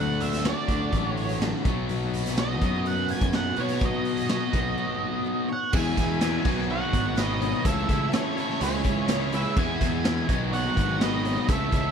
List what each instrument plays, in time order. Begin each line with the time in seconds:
Already playing: picked electric bass D2, steel-string acoustic guitar D3 F#3 A3 D4 F#4, overdriven electric guitar D3 A3 D4, distorted electric guitar F#3 F#4, lead electric guitar F#5
0.20 lead electric guitar E5, closed hi-hat
0.33 snare, closed hi-hat
0.43 distorted electric guitar D3, steel-string acoustic guitar F#3 A3 D4 F#4, lead electric guitar D5, snare, closed hi-hat
0.68 picked electric bass D2, overdriven electric guitar D3 A3 D4, steel-string acoustic guitar D4 F#4, kick, closed hi-hat
0.72 steel-string acoustic guitar A3
0.93 picked electric bass A1, steel-string acoustic guitar D3 F#3 A3 D4 F#4, kick, closed hi-hat
1.08 lead electric guitar C#5
1.17 closed hi-hat
1.29 closed hi-hat
1.41 steel-string acoustic guitar F#3 A3 D4 F#4, snare, closed hi-hat
1.64 picked electric bass B1, overdriven electric guitar B2 F#3 B3, steel-string acoustic guitar F#4, kick, closed hi-hat
1.68 steel-string acoustic guitar B3 D#4
1.89 picked electric bass B1, steel-string acoustic guitar B2 F#3 B3 D#4 F#4, closed hi-hat
2.14 closed hi-hat
2.26 snare, closed hi-hat
2.37 distorted electric guitar B2, steel-string acoustic guitar F#3 B3 D#4 F#4, lead electric guitar D#5, snare, closed hi-hat
2.61 picked electric bass F#2, overdriven electric guitar B2 F#3 B3, steel-string acoustic guitar B3 D#4 F#4, kick, closed hi-hat
2.86 steel-string acoustic guitar B2 F#3 B3 D#4 F#4, lead electric guitar F#5, closed hi-hat
3.08 lead electric guitar G#5, closed hi-hat
3.21 picked electric bass F#2, kick, closed hi-hat
3.33 steel-string acoustic guitar F#3 B3 D#4 F#4, lead electric guitar F#5, snare, closed hi-hat
3.56 overdriven electric guitar B2 F#3, picked electric bass B2, steel-string acoustic guitar B3 D#4 F#4, closed hi-hat
3.60 overdriven electric guitar B3, lead electric guitar C#5
3.69 closed hi-hat
3.79 steel-string acoustic guitar B2 F#3 B3 D#4 F#4, kick, closed hi-hat
3.85 lead electric guitar D#5
4.05 closed hi-hat
4.17 closed hi-hat
4.29 distorted electric guitar B2 F#4, steel-string acoustic guitar F#3 B3 D#4, snare, closed hi-hat
4.53 picked electric bass B1, overdriven electric guitar B2 F#3 B3, steel-string acoustic guitar B3 D#4 F#4, kick, closed hi-hat
4.78 steel-string acoustic guitar B2 F#3 B3 D#4 F#4
5.24 steel-string acoustic guitar F#3 B3 D#4 F#4
5.48 steel-string acoustic guitar B3 D#4 F#4, lead electric guitar C#5
5.53 lead electric guitar F#5
5.72 steel-string acoustic guitar E2 B2 E3 B3 E4 G#4, overdriven electric guitar E2 B2 E3 G#3 B3 E4, picked electric bass E2, lead electric guitar E5 G#5, kick, crash
5.97 picked electric bass E2, overdriven electric guitar E2 B2 E3 G#3 B3 E4, kick, closed hi-hat
6.21 overdriven electric guitar E2 B2 E3 G#3 B3 E4, steel-string acoustic guitar E2 B2 E3 B3 E4 G#4, snare, closed hi-hat
6.44 picked electric bass B1, distorted electric guitar B2 F#4, overdriven electric guitar D#3 F#3 B3 D#4, steel-string acoustic guitar D#4 C#5, kick, crash
6.48 overdriven electric guitar B2
6.59 snare
6.68 overdriven electric guitar B2 D#3 F#3 B3 D#4, steel-string acoustic guitar B3 D#4 F#4 C#5, lead electric guitar C#5 F#5
6.92 picked electric bass G#1, overdriven electric guitar B2 B3 D#4, kick, closed hi-hat
6.97 overdriven electric guitar F#3
7.15 overdriven electric guitar B2 D#3 F#3, steel-string acoustic guitar B3 D#4 F#4 C#5, lead electric guitar B4 D#5, snare, closed hi-hat
7.20 overdriven electric guitar B3 D#4
7.40 overdriven electric guitar B2 B3 D#4, steel-string acoustic guitar D#4 F#4 C#5, closed hi-hat
7.44 overdriven electric guitar F#3
7.64 picked electric bass C#2, overdriven electric guitar A2 C#3 E3 A3 C#4 E4, steel-string acoustic guitar C#3 E3 A3 E4 F#4 C#5, lead electric guitar A4 E5, kick, closed hi-hat
7.87 picked electric bass C#2, overdriven electric guitar A2 E3 C#4 E4, kick, closed hi-hat
7.92 overdriven electric guitar A3
8.12 overdriven electric guitar A2 C#3 E3 A3 C#4 E4, steel-string acoustic guitar C#3 E3 A3 E4 F#4 C#5, lead electric guitar A4 C#5, snare, closed hi-hat
8.36 overdriven electric guitar A2 E3 A3 C#4 E4, distorted electric guitar C#3 E3, steel-string acoustic guitar A3 E4 F#4 C#5, closed hi-hat
8.50 snare
8.60 picked electric bass C#2, overdriven electric guitar C#3 G#3 C#4 E4, distorted electric guitar E3, steel-string acoustic guitar C#4 E4 G#4 C#5, lead electric guitar G#4 C#5, closed hi-hat
8.84 picked electric bass C#2, overdriven electric guitar C#3 G#3 C#4 E4, kick, closed hi-hat
9.08 overdriven electric guitar C#3 G#3 C#4 E4, steel-string acoustic guitar C#3 G#3 C#4 E4 G#4 C#5, lead electric guitar G#4 C#5, snare, closed hi-hat
9.32 overdriven electric guitar C#3 G#3 C#4 E4, distorted electric guitar C#3 E3, steel-string acoustic guitar C#4 E4 G#4 C#5, lead electric guitar B4 E5, closed hi-hat
9.56 overdriven electric guitar E2 B2 E3 G#3 B3 E4, picked electric bass E2, distorted electric guitar E2 B2, steel-string acoustic guitar E3 B3 E4 G#4 B4, lead electric guitar E5 G#5, kick, crash
9.80 overdriven electric guitar E2 B2 E3 G#3 B3 E4, picked electric bass E2, kick, closed hi-hat
10.03 overdriven electric guitar E2 B2 E3 G#3 B3, steel-string acoustic guitar E3 B3 G#4, snare, closed hi-hat
10.08 overdriven electric guitar E4, steel-string acoustic guitar E4 B4
10.29 picked electric bass B1, overdriven electric guitar B2 D#3 F#3 B3 D#4, steel-string acoustic guitar D#4 F#4 C#5, kick, closed hi-hat
10.52 overdriven electric guitar B2 D#3 F#3 B3, steel-string acoustic guitar B3 D#4 F#4, lead electric guitar C#5 F#5, closed hi-hat
10.56 overdriven electric guitar D#4, steel-string acoustic guitar C#5
10.75 picked electric bass G#1, overdriven electric guitar B2 B3 D#4, kick, closed hi-hat
10.80 overdriven electric guitar F#3
11.01 overdriven electric guitar B2 D#3 F#3 B3 D#4, steel-string acoustic guitar B3 D#4 F#4 C#5, lead electric guitar B4 D#5, snare, closed hi-hat
11.24 overdriven electric guitar B2 B3 D#4, steel-string acoustic guitar D#4 F#4 C#5, closed hi-hat
11.28 overdriven electric guitar F#3
11.48 picked electric bass C#2, overdriven electric guitar A2 C#3 E3 A3 C#4 E4, steel-string acoustic guitar C#3 E3 A3 E4 F#4, lead electric guitar A4 E5, kick, closed hi-hat
11.52 steel-string acoustic guitar C#5
11.71 picked electric bass C#2, overdriven electric guitar A2 E3 A3 C#4 E4, kick, closed hi-hat